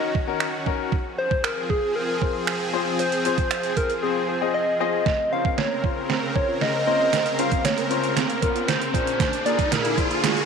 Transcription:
0.00 0.89 D#3 medium
0.00 0.89 C#4 medium
0.00 0.89 F#4 medium
0.00 0.67 D#5 loud
0.15 kick medium
0.27 0.46 C#4 loud
0.27 0.46 D#4 medium
0.27 0.46 F#4 medium
0.27 0.46 A#4 loud
0.40 finger snap loud
0.66 0.92 C#4 loud
0.66 0.92 D#4 medium
0.66 0.93 F#4 medium
0.66 0.93 A#4 loud
0.66 kick medium
0.92 5.02 F3 medium
0.92 5.02 C4 medium
0.92 5.02 G#4 medium
0.92 kick loud
1.18 1.46 C5 loud
1.31 kick medium
1.44 1.71 A#4 loud
1.44 finger snap loud
1.70 1.95 G#4 medium
1.70 kick medium
1.96 2.69 A#4 medium
2.21 2.46 C4 medium
2.21 2.46 F4 medium
2.21 2.46 G#4 medium
2.21 2.46 C5 medium
2.21 kick medium
2.47 finger snap loud
2.73 2.98 C4 medium
2.73 2.98 F4 medium
2.73 2.98 G#4 medium
2.73 2.98 C5 loud
2.99 3.79 C5 loud
2.99 closed hi-hat medium
3.12 closed hi-hat medium
3.25 3.49 C4 medium
3.25 3.49 F4 medium
3.25 3.49 G#4 medium
3.25 3.50 C5 medium
3.25 closed hi-hat medium
3.38 kick medium
3.38 closed hi-hat soft
3.51 finger snap loud
3.51 closed hi-hat medium
3.63 closed hi-hat medium
3.76 3.89 C4 medium
3.76 3.89 F4 medium
3.76 3.89 G#4 medium
3.76 4.04 A#4 loud
3.76 3.89 C5 medium
3.76 kick medium
3.76 closed hi-hat medium
3.90 closed hi-hat soft
4.03 4.21 C4 medium
4.03 4.21 F4 medium
4.03 4.28 G#4 medium
4.03 4.21 G#4 medium
4.03 4.21 C5 medium
4.29 4.56 C5 medium
4.41 4.60 C4 medium
4.41 4.60 F4 medium
4.41 4.60 G#4 medium
4.41 4.60 D#5 medium
4.54 4.80 D#5 loud
4.80 5.06 C4 medium
4.80 5.06 F4 medium
4.80 5.06 G#4 medium
4.80 5.34 D#5 loud
4.80 5.06 D#5 loud
5.06 8.90 C#3 medium
5.06 8.90 C4 medium
5.06 8.90 A#4 medium
5.06 5.14 A#4 loud
5.06 kick loud
5.06 snare medium
5.06 riser medium
5.32 5.40 C#4 medium
5.32 5.56 C#4 medium
5.32 5.56 F4 medium
5.32 5.56 A#4 medium
5.32 5.56 C5 medium
5.32 5.60 F5 loud
5.45 5.52 C4 medium
5.45 kick medium
5.58 5.65 A#3 medium
5.58 5.84 C#5 medium
5.58 snare medium
5.71 5.78 A#4 medium
5.84 6.08 C#4 medium
5.84 6.08 F4 medium
5.84 6.08 A#4 medium
5.84 6.08 C5 medium
5.84 kick medium
6.10 6.17 C4 medium
6.10 snare medium
6.35 6.59 C#4 medium
6.35 6.60 F4 medium
6.35 6.43 A#4 medium
6.35 6.60 A#4 medium
6.35 6.60 C5 medium
6.35 6.63 C#5 medium
6.35 kick medium
6.48 6.56 F4 medium
6.61 6.87 D#5 medium
6.61 snare medium
6.87 6.95 A#3 medium
6.87 7.11 C#4 medium
6.87 7.11 F4 medium
6.87 7.11 A#4 medium
6.87 7.11 C5 medium
6.87 7.41 D#5 loud
7.13 7.21 A#4 loud
7.13 snare medium
7.13 closed hi-hat medium
7.26 closed hi-hat medium
7.39 7.46 C#4 medium
7.39 7.63 C#4 medium
7.39 7.63 F4 medium
7.39 7.63 A#4 medium
7.39 7.63 C5 medium
7.39 7.66 F5 loud
7.39 closed hi-hat medium
7.52 7.59 C4 medium
7.52 kick medium
7.52 closed hi-hat medium
7.65 7.72 A#3 medium
7.65 7.91 C#5 medium
7.65 snare medium
7.65 closed hi-hat medium
7.78 7.85 A#4 medium
7.78 closed hi-hat medium
7.91 8.15 C#4 medium
7.91 8.15 F4 medium
7.91 8.15 A#4 medium
7.91 8.15 C5 medium
7.91 closed hi-hat medium
8.04 closed hi-hat soft
8.16 8.24 C4 medium
8.16 snare medium
8.16 closed hi-hat medium
8.30 closed hi-hat soft
8.42 8.66 C#4 medium
8.42 8.67 F4 medium
8.42 8.50 A#4 medium
8.42 8.69 A#4 medium
8.42 8.67 A#4 medium
8.42 8.67 C5 medium
8.42 kick medium
8.42 closed hi-hat medium
8.55 8.63 F4 medium
8.55 closed hi-hat medium
8.68 8.93 C5 medium
8.68 snare medium
8.68 closed hi-hat medium
8.81 closed hi-hat soft
8.94 9.01 A#2 medium
8.94 10.45 D3 medium
8.94 10.45 A#3 medium
8.94 9.35 D4 medium
8.94 9.35 F4 medium
8.94 10.45 G#4 medium
8.94 9.35 G#4 medium
8.94 9.35 A#4 medium
8.94 9.42 C5 loud
8.94 kick medium
8.94 closed hi-hat medium
9.07 closed hi-hat medium
9.20 9.27 F4 loud
9.20 kick loud
9.20 snare medium
9.20 closed hi-hat medium
9.33 closed hi-hat medium
9.46 9.53 A#3 medium
9.46 9.70 D4 medium
9.46 9.70 F4 medium
9.46 9.70 G#4 medium
9.46 9.70 A#4 medium
9.46 9.73 D5 loud
9.46 closed hi-hat medium
9.59 9.66 G#3 medium
9.59 kick medium
9.59 closed hi-hat medium
9.71 9.79 A#2 medium
9.71 9.98 A#4 medium
9.71 snare medium
9.71 closed hi-hat medium
9.84 9.92 F4 medium
9.84 closed hi-hat medium
9.97 10.22 D4 medium
9.97 10.22 F4 medium
9.97 10.22 G#4 medium
9.97 10.22 C5 medium
9.97 kick medium
9.97 closed hi-hat medium
10.11 closed hi-hat soft
10.23 10.31 G#3 medium
10.23 snare medium
10.23 closed hi-hat medium
10.37 closed hi-hat soft

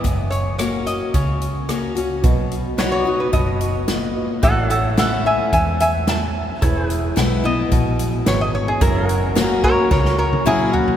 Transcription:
0.00 1.08 F#2 medium
0.00 0.30 D#5 medium
0.04 0.99 F#1 medium
0.04 kick medium
0.04 closed hi-hat medium
0.30 0.57 C#5 medium
0.30 closed hi-hat medium
0.58 1.11 F#3 soft
0.58 1.11 A#3 medium
0.58 1.12 C#4 medium
0.58 1.12 F#4 medium
0.58 0.87 C#5 medium
0.58 cross-stick loud
0.58 closed hi-hat medium
0.86 1.14 D#5 medium
0.86 closed hi-hat medium
1.14 2.09 C#2 medium
1.14 2.18 C#3 medium
1.14 1.92 C#5 medium
1.14 kick medium
1.14 closed hi-hat medium
1.41 closed hi-hat medium
1.69 1.95 F#3 medium
1.69 1.95 A#3 medium
1.69 1.96 C#4 medium
1.69 1.94 F#4 medium
1.69 cross-stick medium
1.69 closed hi-hat medium
1.95 2.23 C#4 soft
1.95 2.22 F#4 soft
1.95 closed hi-hat medium
2.22 3.19 B1 medium
2.22 3.28 B2 medium
2.22 4.11 F#4 medium
2.22 4.12 B4 medium
2.22 4.13 D#5 medium
2.22 kick loud
2.22 closed hi-hat medium
2.51 closed hi-hat medium
2.78 3.05 F#3 medium
2.78 3.05 B3 medium
2.78 3.05 D#4 medium
2.78 3.04 F#4 medium
2.78 4.41 B4 medium
2.78 2.91 C#5 medium
2.78 3.05 C#5 medium
2.78 4.42 F#5 medium
2.78 snare loud
2.78 closed hi-hat medium
2.92 3.19 C#5 medium
3.05 3.33 D#4 soft
3.05 3.32 F#4 soft
3.05 4.42 D#5 medium
3.20 3.33 B4 medium
3.33 4.28 F#1 medium
3.33 3.85 B2 medium
3.33 3.86 D#5 medium
3.33 kick medium
3.33 closed hi-hat soft
3.61 closed hi-hat medium
3.88 4.40 A#2 medium
3.88 snare medium
3.88 closed hi-hat medium
4.15 4.43 F#4 medium
4.15 4.43 B4 medium
4.15 4.44 D#5 medium
4.42 5.38 A1 medium
4.42 5.47 A2 medium
4.42 6.58 E4 medium
4.42 4.69 A4 medium
4.42 6.58 A4 medium
4.42 4.68 B4 medium
4.42 6.59 C#5 medium
4.42 4.69 D#5 medium
4.42 4.70 F#5 medium
4.42 kick loud
4.42 closed hi-hat medium
4.68 6.60 A4 medium
4.68 4.96 A4 medium
4.68 6.61 C#5 medium
4.68 6.61 E5 medium
4.68 4.97 F#5 medium
4.68 closed hi-hat medium
4.97 5.50 E3 medium
4.97 5.50 A3 medium
4.97 5.50 C#4 medium
4.97 5.51 E4 medium
4.97 5.24 A4 medium
4.97 5.25 F#5 medium
4.97 snare loud
4.97 closed hi-hat medium
5.26 5.51 E5 medium
5.26 5.52 G#5 medium
5.53 6.48 E2 medium
5.53 6.05 G#2 medium
5.53 5.78 E5 medium
5.53 5.80 G#5 medium
5.53 kick medium
5.53 closed hi-hat medium
5.80 6.06 E5 medium
5.80 6.07 G#5 medium
5.80 closed hi-hat medium
6.07 6.60 F#2 medium
6.07 6.62 A5 medium
6.07 snare loud
6.07 closed hi-hat medium
6.61 7.10 E1 medium
6.61 7.66 E2 medium
6.61 8.23 E4 medium
6.61 8.80 E4 medium
6.61 8.24 G#4 medium
6.61 6.82 A4 medium
6.61 8.24 B4 medium
6.61 6.88 C#5 medium
6.61 kick loud
6.61 closed hi-hat medium
6.82 8.79 G#4 medium
6.88 8.80 B4 medium
6.88 closed hi-hat medium
7.16 7.64 B1 medium
7.16 7.43 E3 medium
7.16 7.43 G#3 medium
7.16 7.43 B3 medium
7.16 7.43 E4 medium
7.16 snare loud
7.16 closed hi-hat medium
7.44 7.72 B3 medium
7.44 7.71 E4 medium
7.44 8.25 D#5 loud
7.72 8.18 A#1 medium
7.72 8.76 B2 medium
7.72 kick loud
7.72 closed hi-hat medium
7.99 closed hi-hat medium
8.26 8.73 G#1 medium
8.26 8.79 E2 medium
8.26 8.81 E4 soft
8.26 8.82 G#4 soft
8.26 8.82 B4 medium
8.26 8.40 C#5 medium
8.26 snare loud
8.26 closed hi-hat medium
8.41 8.54 D#5 medium
8.55 8.68 C#5 medium
8.68 8.81 G#4 medium
8.80 9.76 F#1 medium
8.80 9.86 F#2 medium
8.80 10.96 C#4 medium
8.80 10.97 F#4 medium
8.80 9.07 G#4 medium
8.80 9.35 A#4 loud
8.80 10.97 A#4 medium
8.80 10.97 C#5 medium
8.80 9.08 E5 medium
8.80 kick loud
8.80 closed hi-hat medium
9.07 10.97 A#4 medium
9.07 10.97 F#5 medium
9.07 closed hi-hat medium
9.35 9.88 F#3 medium
9.35 9.88 A#3 medium
9.35 9.89 C#4 medium
9.35 9.89 F#4 medium
9.35 snare loud
9.35 closed hi-hat medium
9.64 9.90 A#4 loud
9.64 9.90 C#5 loud
9.64 kick medium
9.91 10.86 C#2 medium
9.91 10.95 C#3 medium
9.91 10.17 A#4 medium
9.91 10.18 C#5 medium
9.91 kick loud
9.91 snare medium
10.05 snare medium
10.18 10.44 A#4 medium
10.18 10.46 C#5 medium
10.33 high tom medium
10.46 10.97 F#3 loud
10.46 10.97 A#3 loud
10.46 10.97 C#4 loud
10.46 10.72 E4 medium
10.46 10.97 F#4 loud
10.46 10.73 G#4 loud
10.46 mid tom medium
10.73 10.97 F#4 medium
10.73 floor tom medium
10.88 floor tom medium

